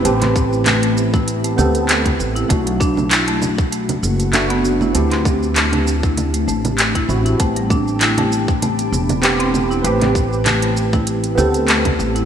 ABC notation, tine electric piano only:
X:1
M:4/4
L:1/8
Q:"Swing 16ths" 1/4=98
K:Ador
V:1 name="Tine electric piano"
[CGB]4- [CGB] [B,CA]3 | [A,DF]6 [A,DF] z | [CEG]4- [CEG] z2 [CEF] | [B,CG]6 [B,CG] z |
[CGB]4- [CGB] [B,CA]3 |]